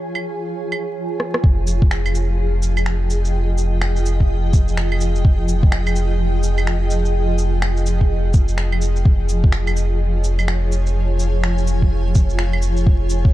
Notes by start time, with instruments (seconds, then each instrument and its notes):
Already playing: ambient pad F3 F4 G#4 C#5 G#5
0.15 claves
0.72 claves
1.20 cross-stick
1.34 cross-stick
1.44 sub bass F1, kick
1.67 cabasa, shaker
1.82 kick
1.91 finger snap
2.06 claves, shaker
2.15 cabasa, shaker
2.34 ambient pad G5
2.39 ambient pad D#5
2.63 cabasa, shaker
2.77 claves, shaker
2.86 finger snap
3.10 cabasa, shaker
3.25 shaker
3.58 cabasa, shaker
3.82 finger snap
3.97 shaker
4.06 cabasa, shaker
4.20 kick
4.53 kick, cabasa, shaker
4.68 shaker
4.77 finger snap
4.92 claves
5.01 cabasa, shaker
5.16 shaker
5.25 kick
5.49 cabasa, shaker
5.63 kick
5.72 finger snap
5.87 claves, shaker
5.96 cabasa, shaker
6.43 cabasa, shaker
6.58 claves, shaker
6.67 finger snap
6.91 cabasa, shaker
7.05 shaker
7.38 cabasa, shaker
7.62 finger snap
7.77 shaker
7.86 cabasa, shaker
8.01 kick
8.34 kick, cabasa, shaker
8.48 shaker
8.58 finger snap
8.72 claves
8.82 cabasa, shaker
8.96 shaker
9.05 sub bass F1, kick
9.29 cabasa, shaker
9.44 ambient pad F4, kick
9.52 finger snap
9.67 claves, shaker
9.77 ambient pad C#5, cabasa, shaker
10.24 cabasa, shaker
10.39 claves, shaker
10.48 finger snap
10.53 ambient pad G#5
10.72 cabasa, shaker
10.87 shaker
11.20 cabasa, shaker
11.44 finger snap
11.58 shaker
11.67 cabasa, shaker
11.82 kick
12.15 kick, cabasa, shaker
12.30 shaker
12.39 finger snap
12.53 claves
12.62 cabasa, shaker
12.77 shaker
12.87 kick
13.10 cabasa, shaker
13.25 kick